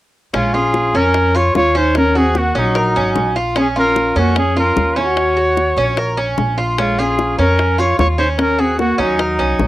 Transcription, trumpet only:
0.35 F4
0.54 G#4
0.96 A#4
1.36 C#5
1.56 C#5
1.77 C5
1.97 A#4
2.17 G#4
2.38 F#4
2.58 D#4
3.59 G#4
3.79 A#4
4.18 F#4
4.39 G#4
4.59 A#4
4.99 C#5
6.79 F4
6.99 G#4
7.38 A#4
7.80 C#5
7.99 C#5
8.19 C5
8.39 A#4
8.60 G#4
8.80 F#4
8.99 D#4

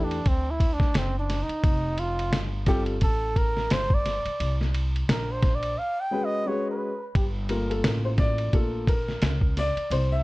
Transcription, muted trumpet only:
0.04 D4
0.28 C4
0.51 E4
0.73 D4
0.97 C4
1.19 D4
1.43 D#4
1.99 F4
2.68 G4
3.03 A4
3.37 A#4
3.72 C5
3.94 D5
5.09 A#4
5.32 C5
5.55 D5
5.78 F5
6.01 G5
6.25 D#5
6.48 C#5
6.71 B4

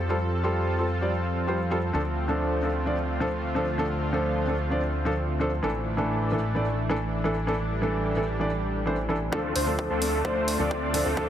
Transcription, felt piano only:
0.09 G3 C4 F4 A4
0.43 G3 C4 F4 A4
0.78 G3 C4 F4 A4
1.01 G3 C4 F4 D5
1.47 G3 C4 F4 C5
1.70 G3 C4 F4 A4
1.93 F3 C4 D4 A4
2.28 F3 C4 D4 A4
2.63 F3 C4 D4 A4
2.86 F3 C4 D4 D5
3.20 F3 C4 D4 A4
3.55 F3 C4 D4 A4
3.78 F3 C4 D4 A4
4.13 F3 C4 D4 A4
4.47 F3 C4 D4 A4
4.70 F3 C4 D4 D5
5.05 F3 C4 D4 A4
5.40 F3 C4 D4 A4
5.63 E3 A3 D4 A4
5.97 E3 A3 D4 A4
6.32 E3 A3 D4 A4
6.55 E3 A3 D4 D5
6.90 E3 A3 D4 A4
7.24 E3 A3 D4 A4
7.47 E3 A3 D4 A4
7.82 E3 A3 D4 A4
8.16 E3 A3 D4 A4
8.40 E3 A3 D4 D5
8.86 E3 A3 D4 C5
9.09 E3 A3 D4 A4
9.32 F3 C4 D4 A4
9.66 F3 C4 D4 A4
10.01 F3 C4 D4 A4
10.24 F3 C4 D4 D5
10.59 F3 C4 D4 A4
10.93 F3 C4 D4 A4
11.17 F3 C4 D4 A4

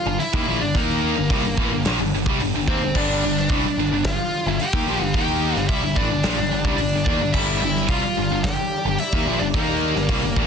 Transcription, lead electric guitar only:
Already playing: F4 F5
0.19 E4 E5
0.61 D4 D5
0.76 A#3 A#4
2.68 C4 C5
2.96 D4 D5
4.06 F4 F5
4.47 E5
4.61 G4 G5
5.16 G4 G5
5.68 E4 E5
5.97 D4 D5
6.77 D4 D5
7.05 D4 D5
7.32 E4 E5
7.61 E4 E5
7.89 F4 F5
8.43 G4 G5
9.00 E4 E5
9.40 D4 D5
9.55 A#3 A#4

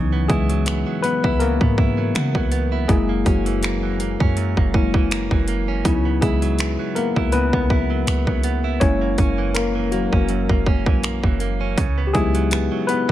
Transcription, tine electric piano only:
Already playing: E3 F#3 B3 D#4
0.28 G#3 G#4
1.02 B3 B4
1.39 A#3 A#4
2.88 G#3 A#3 E4 G#4
3.25 F#3 F#4
4.74 G#3 A#3 E4
5.85 F#3 B3 D#4 E4
6.21 G#3 G#4
6.95 A#3 A#4
7.32 B3 B4
8.80 G#3 A#3 C#4 E4 C#5
9.54 A#3 A#4
9.91 F#3 F#4
12.07 G4
12.13 F#3 G#3 B3 D#4 E4 G#4
12.87 B3 B4

